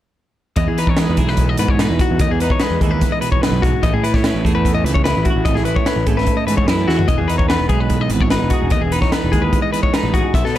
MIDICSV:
0, 0, Header, 1, 5, 480
1, 0, Start_track
1, 0, Key_signature, 4, "major"
1, 0, Tempo, 406780
1, 675, Time_signature, 4, 2, 24, 8
1, 12488, End_track
2, 0, Start_track
2, 0, Title_t, "Clean electric guitar"
2, 0, Program_c, 0, 27
2, 675, Note_on_c, 0, 75, 72
2, 795, Note_off_c, 0, 75, 0
2, 801, Note_on_c, 0, 68, 66
2, 918, Note_off_c, 0, 68, 0
2, 926, Note_on_c, 0, 71, 72
2, 1048, Note_off_c, 0, 71, 0
2, 1048, Note_on_c, 0, 73, 71
2, 1166, Note_off_c, 0, 73, 0
2, 1166, Note_on_c, 0, 71, 78
2, 1402, Note_off_c, 0, 71, 0
2, 1402, Note_on_c, 0, 68, 63
2, 1519, Note_off_c, 0, 68, 0
2, 1519, Note_on_c, 0, 71, 61
2, 1759, Note_off_c, 0, 71, 0
2, 1759, Note_on_c, 0, 75, 60
2, 1875, Note_off_c, 0, 75, 0
2, 1880, Note_on_c, 0, 71, 59
2, 2003, Note_off_c, 0, 71, 0
2, 2003, Note_on_c, 0, 73, 70
2, 2123, Note_off_c, 0, 73, 0
2, 2123, Note_on_c, 0, 71, 77
2, 2360, Note_off_c, 0, 71, 0
2, 2372, Note_on_c, 0, 66, 79
2, 2605, Note_off_c, 0, 66, 0
2, 2612, Note_on_c, 0, 75, 71
2, 2724, Note_off_c, 0, 75, 0
2, 2729, Note_on_c, 0, 68, 70
2, 2843, Note_off_c, 0, 68, 0
2, 2851, Note_on_c, 0, 71, 75
2, 2964, Note_off_c, 0, 71, 0
2, 2967, Note_on_c, 0, 73, 73
2, 3072, Note_on_c, 0, 71, 68
2, 3082, Note_off_c, 0, 73, 0
2, 3314, Note_off_c, 0, 71, 0
2, 3314, Note_on_c, 0, 68, 60
2, 3430, Note_off_c, 0, 68, 0
2, 3430, Note_on_c, 0, 71, 62
2, 3674, Note_off_c, 0, 71, 0
2, 3684, Note_on_c, 0, 75, 73
2, 3785, Note_off_c, 0, 75, 0
2, 3790, Note_on_c, 0, 71, 65
2, 3910, Note_off_c, 0, 71, 0
2, 3915, Note_on_c, 0, 73, 61
2, 4031, Note_off_c, 0, 73, 0
2, 4031, Note_on_c, 0, 71, 76
2, 4274, Note_on_c, 0, 66, 72
2, 4275, Note_off_c, 0, 71, 0
2, 4516, Note_off_c, 0, 66, 0
2, 4519, Note_on_c, 0, 75, 84
2, 4639, Note_off_c, 0, 75, 0
2, 4645, Note_on_c, 0, 68, 72
2, 4762, Note_off_c, 0, 68, 0
2, 4763, Note_on_c, 0, 71, 70
2, 4884, Note_off_c, 0, 71, 0
2, 4884, Note_on_c, 0, 73, 72
2, 5002, Note_off_c, 0, 73, 0
2, 5002, Note_on_c, 0, 71, 63
2, 5250, Note_off_c, 0, 71, 0
2, 5250, Note_on_c, 0, 68, 64
2, 5362, Note_off_c, 0, 68, 0
2, 5367, Note_on_c, 0, 71, 65
2, 5595, Note_off_c, 0, 71, 0
2, 5600, Note_on_c, 0, 75, 72
2, 5717, Note_off_c, 0, 75, 0
2, 5717, Note_on_c, 0, 71, 65
2, 5829, Note_off_c, 0, 71, 0
2, 5834, Note_on_c, 0, 73, 71
2, 5944, Note_off_c, 0, 73, 0
2, 5949, Note_on_c, 0, 71, 75
2, 6192, Note_on_c, 0, 66, 64
2, 6194, Note_off_c, 0, 71, 0
2, 6430, Note_on_c, 0, 75, 81
2, 6435, Note_off_c, 0, 66, 0
2, 6552, Note_on_c, 0, 68, 69
2, 6554, Note_off_c, 0, 75, 0
2, 6663, Note_off_c, 0, 68, 0
2, 6668, Note_on_c, 0, 71, 77
2, 6793, Note_off_c, 0, 71, 0
2, 6793, Note_on_c, 0, 73, 71
2, 6916, Note_off_c, 0, 73, 0
2, 6918, Note_on_c, 0, 71, 74
2, 7161, Note_off_c, 0, 71, 0
2, 7161, Note_on_c, 0, 68, 68
2, 7277, Note_off_c, 0, 68, 0
2, 7282, Note_on_c, 0, 71, 67
2, 7515, Note_on_c, 0, 75, 62
2, 7520, Note_off_c, 0, 71, 0
2, 7627, Note_off_c, 0, 75, 0
2, 7631, Note_on_c, 0, 71, 65
2, 7749, Note_off_c, 0, 71, 0
2, 7754, Note_on_c, 0, 73, 66
2, 7869, Note_off_c, 0, 73, 0
2, 7869, Note_on_c, 0, 71, 76
2, 8113, Note_off_c, 0, 71, 0
2, 8114, Note_on_c, 0, 66, 68
2, 8352, Note_on_c, 0, 75, 77
2, 8356, Note_off_c, 0, 66, 0
2, 8470, Note_on_c, 0, 68, 65
2, 8475, Note_off_c, 0, 75, 0
2, 8588, Note_on_c, 0, 71, 75
2, 8594, Note_off_c, 0, 68, 0
2, 8704, Note_off_c, 0, 71, 0
2, 8709, Note_on_c, 0, 73, 69
2, 8828, Note_off_c, 0, 73, 0
2, 8832, Note_on_c, 0, 71, 67
2, 9069, Note_off_c, 0, 71, 0
2, 9074, Note_on_c, 0, 68, 62
2, 9209, Note_off_c, 0, 68, 0
2, 9209, Note_on_c, 0, 71, 55
2, 9453, Note_off_c, 0, 71, 0
2, 9453, Note_on_c, 0, 75, 73
2, 9568, Note_off_c, 0, 75, 0
2, 9568, Note_on_c, 0, 71, 69
2, 9692, Note_off_c, 0, 71, 0
2, 9692, Note_on_c, 0, 73, 67
2, 9800, Note_off_c, 0, 73, 0
2, 9805, Note_on_c, 0, 71, 67
2, 10031, Note_on_c, 0, 66, 73
2, 10040, Note_off_c, 0, 71, 0
2, 10272, Note_off_c, 0, 66, 0
2, 10289, Note_on_c, 0, 75, 82
2, 10399, Note_on_c, 0, 68, 66
2, 10401, Note_off_c, 0, 75, 0
2, 10517, Note_off_c, 0, 68, 0
2, 10527, Note_on_c, 0, 71, 71
2, 10634, Note_off_c, 0, 71, 0
2, 10639, Note_on_c, 0, 73, 66
2, 10761, Note_off_c, 0, 73, 0
2, 10761, Note_on_c, 0, 71, 72
2, 10995, Note_on_c, 0, 68, 64
2, 10997, Note_off_c, 0, 71, 0
2, 11113, Note_on_c, 0, 71, 64
2, 11114, Note_off_c, 0, 68, 0
2, 11350, Note_off_c, 0, 71, 0
2, 11355, Note_on_c, 0, 75, 72
2, 11471, Note_off_c, 0, 75, 0
2, 11475, Note_on_c, 0, 71, 67
2, 11593, Note_off_c, 0, 71, 0
2, 11597, Note_on_c, 0, 73, 69
2, 11722, Note_off_c, 0, 73, 0
2, 11722, Note_on_c, 0, 71, 71
2, 11957, Note_off_c, 0, 71, 0
2, 11961, Note_on_c, 0, 66, 70
2, 12196, Note_off_c, 0, 66, 0
2, 12209, Note_on_c, 0, 76, 71
2, 12320, Note_off_c, 0, 76, 0
2, 12330, Note_on_c, 0, 69, 69
2, 12440, Note_off_c, 0, 69, 0
2, 12488, End_track
3, 0, Start_track
3, 0, Title_t, "Clean electric guitar"
3, 0, Program_c, 1, 27
3, 678, Note_on_c, 1, 40, 71
3, 932, Note_on_c, 1, 63, 53
3, 1157, Note_on_c, 1, 56, 54
3, 1391, Note_on_c, 1, 52, 60
3, 1883, Note_on_c, 1, 47, 57
3, 2100, Note_off_c, 1, 63, 0
3, 2114, Note_on_c, 1, 63, 55
3, 2373, Note_on_c, 1, 66, 54
3, 2567, Note_off_c, 1, 63, 0
3, 2571, Note_off_c, 1, 47, 0
3, 2576, Note_off_c, 1, 66, 0
3, 2592, Note_off_c, 1, 40, 0
3, 2607, Note_on_c, 1, 40, 70
3, 2871, Note_on_c, 1, 63, 56
3, 2906, Note_off_c, 1, 52, 0
3, 3099, Note_off_c, 1, 56, 0
3, 3104, Note_on_c, 1, 56, 60
3, 3340, Note_on_c, 1, 52, 59
3, 3797, Note_on_c, 1, 47, 61
3, 4043, Note_off_c, 1, 40, 0
3, 4062, Note_on_c, 1, 42, 54
3, 4281, Note_off_c, 1, 42, 0
3, 4285, Note_on_c, 1, 44, 62
3, 4489, Note_off_c, 1, 47, 0
3, 4506, Note_off_c, 1, 63, 0
3, 4517, Note_on_c, 1, 45, 72
3, 4522, Note_off_c, 1, 44, 0
3, 4553, Note_off_c, 1, 56, 0
3, 4759, Note_on_c, 1, 64, 55
3, 5026, Note_on_c, 1, 61, 58
3, 5243, Note_off_c, 1, 52, 0
3, 5247, Note_on_c, 1, 57, 59
3, 5718, Note_off_c, 1, 45, 0
3, 5757, Note_on_c, 1, 40, 56
3, 5993, Note_off_c, 1, 64, 0
3, 5998, Note_on_c, 1, 64, 60
3, 6256, Note_on_c, 1, 66, 58
3, 6414, Note_off_c, 1, 57, 0
3, 6423, Note_off_c, 1, 61, 0
3, 6439, Note_off_c, 1, 66, 0
3, 6458, Note_off_c, 1, 40, 0
3, 6463, Note_on_c, 1, 45, 70
3, 6693, Note_off_c, 1, 64, 0
3, 6697, Note_on_c, 1, 64, 53
3, 6925, Note_on_c, 1, 61, 54
3, 7173, Note_on_c, 1, 57, 61
3, 7650, Note_off_c, 1, 45, 0
3, 7664, Note_on_c, 1, 40, 54
3, 7891, Note_off_c, 1, 64, 0
3, 7896, Note_on_c, 1, 64, 52
3, 8114, Note_off_c, 1, 64, 0
3, 8114, Note_on_c, 1, 64, 56
3, 8228, Note_off_c, 1, 64, 0
3, 8228, Note_on_c, 1, 66, 44
3, 8332, Note_off_c, 1, 61, 0
3, 8336, Note_off_c, 1, 57, 0
3, 8339, Note_off_c, 1, 40, 0
3, 8352, Note_off_c, 1, 66, 0
3, 8354, Note_on_c, 1, 40, 67
3, 8609, Note_on_c, 1, 63, 50
3, 8850, Note_on_c, 1, 59, 61
3, 9107, Note_on_c, 1, 56, 59
3, 9554, Note_off_c, 1, 40, 0
3, 9576, Note_on_c, 1, 40, 55
3, 9801, Note_off_c, 1, 63, 0
3, 9818, Note_on_c, 1, 63, 56
3, 10069, Note_on_c, 1, 68, 54
3, 10257, Note_off_c, 1, 63, 0
3, 10261, Note_off_c, 1, 56, 0
3, 10263, Note_off_c, 1, 68, 0
3, 10285, Note_off_c, 1, 40, 0
3, 10302, Note_on_c, 1, 40, 76
3, 10533, Note_on_c, 1, 63, 57
3, 10776, Note_off_c, 1, 59, 0
3, 10781, Note_on_c, 1, 59, 53
3, 11010, Note_on_c, 1, 56, 60
3, 11474, Note_off_c, 1, 40, 0
3, 11488, Note_on_c, 1, 40, 59
3, 11715, Note_off_c, 1, 63, 0
3, 11729, Note_on_c, 1, 63, 57
3, 11971, Note_on_c, 1, 68, 55
3, 12171, Note_off_c, 1, 56, 0
3, 12171, Note_off_c, 1, 63, 0
3, 12172, Note_off_c, 1, 68, 0
3, 12199, Note_off_c, 1, 40, 0
3, 12211, Note_on_c, 1, 47, 67
3, 12450, Note_on_c, 1, 61, 52
3, 12485, Note_off_c, 1, 59, 0
3, 12488, Note_off_c, 1, 47, 0
3, 12488, Note_off_c, 1, 61, 0
3, 12488, End_track
4, 0, Start_track
4, 0, Title_t, "Picked electric bass"
4, 0, Program_c, 2, 34
4, 667, Note_on_c, 2, 40, 95
4, 782, Note_off_c, 2, 40, 0
4, 800, Note_on_c, 2, 52, 78
4, 1243, Note_off_c, 2, 52, 0
4, 1292, Note_on_c, 2, 40, 80
4, 1381, Note_off_c, 2, 40, 0
4, 1388, Note_on_c, 2, 35, 79
4, 1837, Note_off_c, 2, 35, 0
4, 1876, Note_on_c, 2, 44, 83
4, 2210, Note_off_c, 2, 44, 0
4, 2238, Note_on_c, 2, 40, 88
4, 2349, Note_off_c, 2, 40, 0
4, 2490, Note_on_c, 2, 40, 83
4, 2586, Note_off_c, 2, 40, 0
4, 2593, Note_on_c, 2, 39, 96
4, 2703, Note_off_c, 2, 39, 0
4, 2710, Note_on_c, 2, 40, 77
4, 2935, Note_off_c, 2, 40, 0
4, 3194, Note_on_c, 2, 40, 76
4, 3307, Note_off_c, 2, 40, 0
4, 3316, Note_on_c, 2, 39, 81
4, 3539, Note_off_c, 2, 39, 0
4, 4149, Note_on_c, 2, 35, 77
4, 4376, Note_off_c, 2, 35, 0
4, 4518, Note_on_c, 2, 33, 92
4, 4629, Note_off_c, 2, 33, 0
4, 4648, Note_on_c, 2, 45, 83
4, 5088, Note_off_c, 2, 45, 0
4, 5127, Note_on_c, 2, 33, 69
4, 5234, Note_off_c, 2, 33, 0
4, 5255, Note_on_c, 2, 40, 73
4, 5692, Note_off_c, 2, 40, 0
4, 5712, Note_on_c, 2, 37, 86
4, 6049, Note_off_c, 2, 37, 0
4, 6097, Note_on_c, 2, 33, 80
4, 6200, Note_off_c, 2, 33, 0
4, 6327, Note_on_c, 2, 33, 88
4, 6432, Note_off_c, 2, 33, 0
4, 6439, Note_on_c, 2, 32, 96
4, 6550, Note_off_c, 2, 32, 0
4, 6572, Note_on_c, 2, 33, 73
4, 6788, Note_off_c, 2, 33, 0
4, 7034, Note_on_c, 2, 33, 77
4, 7147, Note_off_c, 2, 33, 0
4, 7158, Note_on_c, 2, 32, 77
4, 7380, Note_off_c, 2, 32, 0
4, 7640, Note_on_c, 2, 44, 66
4, 7855, Note_off_c, 2, 44, 0
4, 7881, Note_on_c, 2, 42, 68
4, 8095, Note_off_c, 2, 42, 0
4, 8118, Note_on_c, 2, 40, 76
4, 8333, Note_off_c, 2, 40, 0
4, 8361, Note_on_c, 2, 28, 94
4, 8470, Note_off_c, 2, 28, 0
4, 8483, Note_on_c, 2, 40, 82
4, 8924, Note_off_c, 2, 40, 0
4, 8958, Note_on_c, 2, 28, 71
4, 9068, Note_off_c, 2, 28, 0
4, 9079, Note_on_c, 2, 35, 85
4, 9522, Note_off_c, 2, 35, 0
4, 9552, Note_on_c, 2, 32, 90
4, 9887, Note_off_c, 2, 32, 0
4, 9934, Note_on_c, 2, 28, 76
4, 10036, Note_off_c, 2, 28, 0
4, 10174, Note_on_c, 2, 28, 86
4, 10269, Note_off_c, 2, 28, 0
4, 10276, Note_on_c, 2, 39, 95
4, 10386, Note_off_c, 2, 39, 0
4, 10407, Note_on_c, 2, 28, 75
4, 10623, Note_off_c, 2, 28, 0
4, 10908, Note_on_c, 2, 28, 78
4, 11003, Note_off_c, 2, 28, 0
4, 11014, Note_on_c, 2, 39, 81
4, 11227, Note_off_c, 2, 39, 0
4, 11840, Note_on_c, 2, 33, 76
4, 12058, Note_off_c, 2, 33, 0
4, 12199, Note_on_c, 2, 35, 102
4, 12307, Note_off_c, 2, 35, 0
4, 12326, Note_on_c, 2, 47, 86
4, 12488, Note_off_c, 2, 47, 0
4, 12488, End_track
5, 0, Start_track
5, 0, Title_t, "Drums"
5, 664, Note_on_c, 9, 42, 76
5, 670, Note_on_c, 9, 36, 113
5, 782, Note_off_c, 9, 42, 0
5, 788, Note_off_c, 9, 36, 0
5, 918, Note_on_c, 9, 42, 63
5, 1029, Note_on_c, 9, 36, 84
5, 1036, Note_off_c, 9, 42, 0
5, 1140, Note_on_c, 9, 38, 101
5, 1140, Note_on_c, 9, 42, 85
5, 1147, Note_off_c, 9, 36, 0
5, 1258, Note_off_c, 9, 38, 0
5, 1258, Note_off_c, 9, 42, 0
5, 1381, Note_on_c, 9, 42, 60
5, 1388, Note_on_c, 9, 36, 68
5, 1499, Note_off_c, 9, 42, 0
5, 1506, Note_off_c, 9, 36, 0
5, 1506, Note_on_c, 9, 38, 33
5, 1616, Note_on_c, 9, 42, 74
5, 1624, Note_off_c, 9, 38, 0
5, 1624, Note_on_c, 9, 36, 62
5, 1734, Note_off_c, 9, 42, 0
5, 1742, Note_off_c, 9, 36, 0
5, 1858, Note_on_c, 9, 42, 67
5, 1976, Note_off_c, 9, 42, 0
5, 1988, Note_on_c, 9, 36, 85
5, 2106, Note_off_c, 9, 36, 0
5, 2114, Note_on_c, 9, 38, 92
5, 2114, Note_on_c, 9, 42, 87
5, 2232, Note_off_c, 9, 38, 0
5, 2232, Note_off_c, 9, 42, 0
5, 2353, Note_on_c, 9, 36, 87
5, 2354, Note_on_c, 9, 42, 67
5, 2471, Note_off_c, 9, 36, 0
5, 2472, Note_off_c, 9, 42, 0
5, 2589, Note_on_c, 9, 42, 88
5, 2592, Note_on_c, 9, 36, 113
5, 2707, Note_off_c, 9, 42, 0
5, 2710, Note_off_c, 9, 36, 0
5, 2836, Note_on_c, 9, 42, 63
5, 2952, Note_on_c, 9, 36, 83
5, 2954, Note_off_c, 9, 42, 0
5, 3063, Note_on_c, 9, 38, 103
5, 3063, Note_on_c, 9, 42, 73
5, 3070, Note_off_c, 9, 36, 0
5, 3181, Note_off_c, 9, 38, 0
5, 3181, Note_off_c, 9, 42, 0
5, 3317, Note_on_c, 9, 36, 68
5, 3321, Note_on_c, 9, 42, 53
5, 3435, Note_off_c, 9, 36, 0
5, 3439, Note_off_c, 9, 42, 0
5, 3556, Note_on_c, 9, 42, 74
5, 3559, Note_on_c, 9, 36, 66
5, 3674, Note_off_c, 9, 42, 0
5, 3677, Note_off_c, 9, 36, 0
5, 3798, Note_on_c, 9, 42, 54
5, 3916, Note_off_c, 9, 42, 0
5, 3920, Note_on_c, 9, 36, 80
5, 4038, Note_off_c, 9, 36, 0
5, 4049, Note_on_c, 9, 38, 102
5, 4049, Note_on_c, 9, 42, 76
5, 4167, Note_off_c, 9, 38, 0
5, 4167, Note_off_c, 9, 42, 0
5, 4287, Note_on_c, 9, 36, 89
5, 4298, Note_on_c, 9, 42, 61
5, 4405, Note_off_c, 9, 36, 0
5, 4416, Note_off_c, 9, 42, 0
5, 4520, Note_on_c, 9, 42, 70
5, 4523, Note_on_c, 9, 36, 106
5, 4638, Note_off_c, 9, 42, 0
5, 4641, Note_off_c, 9, 36, 0
5, 4770, Note_on_c, 9, 42, 59
5, 4885, Note_on_c, 9, 36, 80
5, 4885, Note_on_c, 9, 38, 33
5, 4888, Note_off_c, 9, 42, 0
5, 5003, Note_off_c, 9, 36, 0
5, 5003, Note_off_c, 9, 38, 0
5, 5003, Note_on_c, 9, 38, 108
5, 5003, Note_on_c, 9, 42, 83
5, 5121, Note_off_c, 9, 38, 0
5, 5121, Note_off_c, 9, 42, 0
5, 5249, Note_on_c, 9, 36, 71
5, 5264, Note_on_c, 9, 42, 61
5, 5367, Note_off_c, 9, 36, 0
5, 5382, Note_off_c, 9, 42, 0
5, 5488, Note_on_c, 9, 36, 61
5, 5495, Note_on_c, 9, 42, 75
5, 5606, Note_off_c, 9, 36, 0
5, 5613, Note_off_c, 9, 42, 0
5, 5735, Note_on_c, 9, 42, 60
5, 5847, Note_on_c, 9, 36, 80
5, 5853, Note_off_c, 9, 42, 0
5, 5965, Note_off_c, 9, 36, 0
5, 5965, Note_on_c, 9, 38, 98
5, 5965, Note_on_c, 9, 42, 86
5, 6083, Note_off_c, 9, 38, 0
5, 6083, Note_off_c, 9, 42, 0
5, 6196, Note_on_c, 9, 42, 62
5, 6203, Note_on_c, 9, 36, 86
5, 6314, Note_off_c, 9, 42, 0
5, 6321, Note_off_c, 9, 36, 0
5, 6436, Note_on_c, 9, 42, 81
5, 6438, Note_on_c, 9, 36, 110
5, 6554, Note_off_c, 9, 42, 0
5, 6556, Note_off_c, 9, 36, 0
5, 6557, Note_on_c, 9, 38, 29
5, 6671, Note_on_c, 9, 42, 60
5, 6675, Note_off_c, 9, 38, 0
5, 6789, Note_off_c, 9, 42, 0
5, 6801, Note_on_c, 9, 36, 91
5, 6916, Note_on_c, 9, 38, 100
5, 6916, Note_on_c, 9, 42, 79
5, 6919, Note_off_c, 9, 36, 0
5, 7034, Note_off_c, 9, 38, 0
5, 7034, Note_off_c, 9, 42, 0
5, 7158, Note_on_c, 9, 42, 62
5, 7160, Note_on_c, 9, 36, 69
5, 7276, Note_off_c, 9, 42, 0
5, 7278, Note_off_c, 9, 36, 0
5, 7295, Note_on_c, 9, 38, 30
5, 7393, Note_on_c, 9, 42, 71
5, 7399, Note_on_c, 9, 36, 59
5, 7413, Note_off_c, 9, 38, 0
5, 7511, Note_off_c, 9, 42, 0
5, 7517, Note_off_c, 9, 36, 0
5, 7645, Note_on_c, 9, 42, 64
5, 7763, Note_off_c, 9, 42, 0
5, 7763, Note_on_c, 9, 36, 78
5, 7881, Note_off_c, 9, 36, 0
5, 7882, Note_on_c, 9, 38, 99
5, 7882, Note_on_c, 9, 42, 68
5, 8000, Note_off_c, 9, 38, 0
5, 8000, Note_off_c, 9, 42, 0
5, 8133, Note_on_c, 9, 38, 57
5, 8247, Note_on_c, 9, 43, 81
5, 8251, Note_off_c, 9, 38, 0
5, 8357, Note_on_c, 9, 42, 71
5, 8363, Note_on_c, 9, 36, 99
5, 8365, Note_off_c, 9, 43, 0
5, 8475, Note_off_c, 9, 42, 0
5, 8481, Note_off_c, 9, 36, 0
5, 8607, Note_on_c, 9, 42, 62
5, 8723, Note_on_c, 9, 36, 84
5, 8725, Note_off_c, 9, 42, 0
5, 8841, Note_off_c, 9, 36, 0
5, 8847, Note_on_c, 9, 38, 109
5, 8847, Note_on_c, 9, 42, 74
5, 8965, Note_off_c, 9, 38, 0
5, 8965, Note_off_c, 9, 42, 0
5, 9077, Note_on_c, 9, 42, 56
5, 9083, Note_on_c, 9, 36, 76
5, 9195, Note_off_c, 9, 42, 0
5, 9201, Note_off_c, 9, 36, 0
5, 9319, Note_on_c, 9, 42, 76
5, 9323, Note_on_c, 9, 36, 63
5, 9437, Note_off_c, 9, 42, 0
5, 9441, Note_off_c, 9, 36, 0
5, 9553, Note_on_c, 9, 42, 59
5, 9671, Note_off_c, 9, 42, 0
5, 9682, Note_on_c, 9, 36, 80
5, 9800, Note_off_c, 9, 36, 0
5, 9800, Note_on_c, 9, 38, 98
5, 9800, Note_on_c, 9, 42, 73
5, 9918, Note_off_c, 9, 38, 0
5, 9918, Note_off_c, 9, 42, 0
5, 10030, Note_on_c, 9, 42, 64
5, 10039, Note_on_c, 9, 36, 83
5, 10148, Note_off_c, 9, 42, 0
5, 10157, Note_off_c, 9, 36, 0
5, 10270, Note_on_c, 9, 42, 79
5, 10281, Note_on_c, 9, 36, 111
5, 10388, Note_off_c, 9, 42, 0
5, 10399, Note_off_c, 9, 36, 0
5, 10524, Note_on_c, 9, 42, 60
5, 10642, Note_off_c, 9, 42, 0
5, 10643, Note_on_c, 9, 36, 87
5, 10645, Note_on_c, 9, 38, 33
5, 10761, Note_off_c, 9, 36, 0
5, 10763, Note_off_c, 9, 38, 0
5, 10764, Note_on_c, 9, 38, 100
5, 10764, Note_on_c, 9, 42, 79
5, 10882, Note_off_c, 9, 38, 0
5, 10882, Note_off_c, 9, 42, 0
5, 11007, Note_on_c, 9, 36, 68
5, 11008, Note_on_c, 9, 42, 60
5, 11125, Note_off_c, 9, 36, 0
5, 11126, Note_off_c, 9, 42, 0
5, 11243, Note_on_c, 9, 36, 68
5, 11244, Note_on_c, 9, 42, 77
5, 11361, Note_off_c, 9, 36, 0
5, 11362, Note_off_c, 9, 42, 0
5, 11488, Note_on_c, 9, 42, 57
5, 11602, Note_on_c, 9, 36, 74
5, 11606, Note_off_c, 9, 42, 0
5, 11720, Note_off_c, 9, 36, 0
5, 11725, Note_on_c, 9, 38, 99
5, 11725, Note_on_c, 9, 42, 76
5, 11843, Note_off_c, 9, 38, 0
5, 11843, Note_off_c, 9, 42, 0
5, 11963, Note_on_c, 9, 36, 84
5, 11972, Note_on_c, 9, 42, 61
5, 12081, Note_off_c, 9, 36, 0
5, 12090, Note_off_c, 9, 42, 0
5, 12201, Note_on_c, 9, 36, 96
5, 12208, Note_on_c, 9, 42, 79
5, 12319, Note_off_c, 9, 36, 0
5, 12326, Note_off_c, 9, 42, 0
5, 12337, Note_on_c, 9, 38, 28
5, 12455, Note_off_c, 9, 38, 0
5, 12488, End_track
0, 0, End_of_file